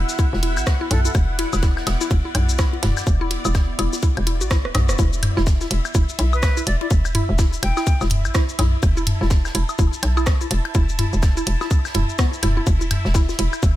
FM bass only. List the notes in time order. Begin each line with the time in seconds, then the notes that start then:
0.33 E1
0.57 A1
0.91 B1
1.15 E1
1.53 E1
1.87 E1
2.11 E1
2.35 B1
2.83 E1
3.07 E1
3.45 E1
3.79 E1
4.17 E1
4.41 A1
4.65 D1
4.75 B1
4.89 E1
4.99 E1
5.37 E1
5.71 E1
5.95 E1
6.19 B1
6.67 E1
6.91 E1
7.29 E1
7.63 E1
8.01 E1
8.25 A1
8.59 B1
8.83 E1
9.21 E1
9.55 E1
9.79 E1
10.03 B1
10.51 E1
10.75 E1
11.13 E1
11.47 E1
11.95 E1
12.43 E1
12.67 E1
13.05 E1
13.39 E1
13.63 E1